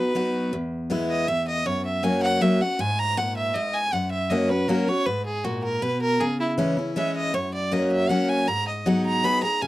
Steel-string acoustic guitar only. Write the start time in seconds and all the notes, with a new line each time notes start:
Already playing: B2 D#4 F#4
0.15 F#3 B3 D#4 F#4
0.53 E2
0.90 E3 G#3 B3 E4
1.28 E2
1.66 F#2
2.03 F#3 A#3 C#4 F#4
2.41 F#3 A#3 C#4 F#4
2.60 C#4 F#4
2.79 G#2
3.17 A#2
3.55 G#2
3.93 F#2
4.30 F#3 A#3 C#4 F#4
4.49 C#4 F#4
4.68 F#3 A#3 C#4 F#4
4.88 C#4 F#4
5.06 G#2
5.44 A#2
5.82 B2
6.20 C#3
6.58 E3 G#3 C#4 E4
6.77 C#4 E4
6.96 E3 G#3 C#4 E4
7.34 F#2
7.71 F#3 A#3 C#4 F#4
8.09 F#3 A#3 C#4 F#4
8.48 G#2
8.86 F#3 B3 D#4 G#4
9.24 F#3 B3 D#4 G#4
9.43 D#4 G#4
9.62 C#3